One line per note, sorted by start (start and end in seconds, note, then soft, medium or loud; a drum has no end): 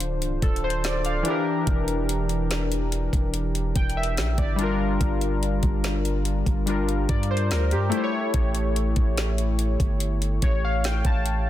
0.00 0.23 D1 loud
0.00 1.20 D3 medium
0.00 1.22 D4 medium
0.00 1.23 F4 medium
0.00 0.41 C5 medium
0.00 closed hi-hat medium
0.22 0.42 C1 loud
0.22 closed hi-hat soft
0.42 1.23 D1 loud
0.42 0.62 A4 medium
0.42 kick loud
0.42 closed hi-hat medium
0.56 closed hi-hat medium
0.64 0.83 C5 medium
0.70 closed hi-hat medium
0.84 1.04 D5 medium
0.84 snare loud
0.84 closed hi-hat medium
1.05 1.45 F5 medium
1.05 closed hi-hat soft
1.23 4.54 E3 medium
1.23 4.55 D4 medium
1.23 closed hi-hat medium
1.28 4.56 G4 medium
1.28 4.57 A#4 medium
1.67 3.09 E1 loud
1.67 kick loud
1.67 closed hi-hat medium
1.88 closed hi-hat medium
2.09 closed hi-hat medium
2.29 closed hi-hat soft
2.51 snare loud
2.51 closed hi-hat medium
2.72 closed hi-hat soft
2.92 closed hi-hat medium
3.13 3.73 E1 loud
3.13 kick loud
3.13 closed hi-hat medium
3.34 closed hi-hat medium
3.55 closed hi-hat medium
3.76 4.20 E1 loud
3.76 3.96 G5 medium
3.76 kick loud
3.76 closed hi-hat medium
3.90 closed hi-hat medium
3.97 4.36 E5 medium
4.03 closed hi-hat medium
4.17 4.38 A#1 loud
4.17 snare loud
4.17 closed hi-hat medium
4.38 4.98 G1 loud
4.38 4.78 D5 medium
4.38 kick medium
4.38 closed hi-hat soft
4.56 6.62 G3 medium
4.56 6.63 D4 medium
4.56 closed hi-hat medium
4.61 6.64 F4 medium
4.61 6.66 A#4 medium
5.01 5.61 G1 loud
5.01 kick loud
5.01 closed hi-hat medium
5.21 closed hi-hat medium
5.43 closed hi-hat medium
5.63 6.43 G1 loud
5.63 kick medium
5.63 closed hi-hat soft
5.84 snare loud
5.84 closed hi-hat medium
6.05 closed hi-hat medium
6.25 closed hi-hat medium
6.46 7.07 G1 loud
6.46 kick loud
6.46 closed hi-hat medium
6.66 7.92 G3 medium
6.66 7.92 D4 medium
6.66 7.93 F4 medium
6.66 7.10 A#4 medium
6.66 closed hi-hat medium
6.89 closed hi-hat soft
7.09 7.53 G2 loud
7.09 7.29 D5 medium
7.09 kick medium
7.09 closed hi-hat medium
7.23 closed hi-hat medium
7.31 7.50 C5 medium
7.37 closed hi-hat medium
7.51 7.74 D2 loud
7.51 7.71 A#4 medium
7.51 snare loud
7.51 closed hi-hat medium
7.71 7.92 G2 loud
7.71 7.93 G4 medium
7.71 closed hi-hat soft
7.90 11.20 A3 medium
7.90 11.22 E4 medium
7.90 closed hi-hat medium
7.95 11.23 G4 medium
7.95 8.01 C5 medium
8.04 10.42 C#5 medium
8.34 8.94 A1 loud
8.34 kick loud
8.34 closed hi-hat medium
8.55 closed hi-hat medium
8.76 closed hi-hat medium
8.96 9.77 A1 loud
8.96 kick loud
8.96 closed hi-hat soft
9.17 snare loud
9.17 closed hi-hat medium
9.38 closed hi-hat soft
9.59 closed hi-hat medium
9.80 10.40 G1 loud
9.80 kick loud
9.80 closed hi-hat medium
10.00 closed hi-hat medium
10.22 closed hi-hat soft
10.42 11.03 A1 loud
10.42 10.62 C#5 medium
10.42 kick loud
10.42 closed hi-hat medium
10.65 10.83 F5 medium
10.84 11.04 G5 medium
10.84 snare loud
10.84 closed hi-hat medium
11.05 11.49 A1 loud
11.05 11.50 A5 medium
11.05 kick loud
11.05 closed hi-hat soft
11.26 closed hi-hat medium